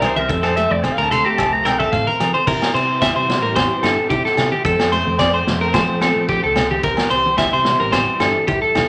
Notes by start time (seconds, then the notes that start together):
Already playing: C2 E3 G3 C4 A#4
0.02 E4 C5, cross-stick, closed hi-hat, high conga, low conga, low agogo
0.16 C2 A#4 E5, high conga
0.29 F2 F3 A3 C4 A4, muted clean electric guitar stroke, kick
0.43 A4 C5, cross-stick, low agogo
0.56 A3 E5, closed hi-hat
0.70 F2 D5, muted clean electric guitar stroke, high conga
0.83 C4 C5, kick, cross-stick, low conga, low agogo
0.93 F5
0.98 D2 A#4
1.03 A5
1.11 A3 A4 C6, closed hi-hat, low conga
1.25 G4 A#5
1.38 C2 A3 A5, kick, cross-stick, low agogo
1.53 A#5
1.65 C4 A#4 G5, cross-stick, closed hi-hat, low conga, low agogo
1.79 A4 E5, kick
1.92 A2 C4 F5, kick
2.07 A#4, high conga
2.20 F3 C4, cross-stick, closed hi-hat, high conga, low conga, low agogo
2.34 C5, high conga
2.47 C3 E3 G3 C4 E4 A#4, kick, crash
2.62 snare, low agogo
2.74 C3 C4 C5
3.02 E4 E5, kick, snare, low agogo
3.16 C3 C5
3.29 C4, snare, low conga
3.42 A2 A#4
3.56 C4 C5, kick, snare, high conga, low agogo
3.83 G2 E4 A4, snare, low agogo
4.10 C3 E4 G4, kick
4.25 A4, snare
4.37 C3 E4, snare, low conga, low agogo
4.52 G4, high conga
4.65 F2 F3 A3 C4 A4, kick
4.79 snare, low agogo
4.92 A3 C5
5.07 F2, high conga
5.19 C4 D5, kick, snare, low agogo
5.34 C5
5.47 F2 A3, snare, low conga
5.61 A#4
5.74 F3 A3 C5, kick, snare, high conga, low agogo
5.89 F3
6.01 C4 A4, snare, low agogo
6.16 F3
6.29 G4, kick
6.44 C#2 A4
6.56 C4, snare, low conga, low agogo
6.71 G4, high conga
6.82 C2 E3 G3 A#4, muted steel-string acoustic guitar stroke, kick
6.97 snare, low agogo
7.10 C2 C4 C5
7.26 high conga
7.38 E4 E5, kick, snare, low agogo
7.53 C3 C5
7.65 C4, snare, low conga
7.80 A1 A#4
7.92 C4 C5, kick, snare, high conga, low agogo
8.20 G2 E4 A4, snare, low agogo
8.47 C2 E4 G4, kick
8.62 A4
8.75 E2 E4, snare, low conga, low agogo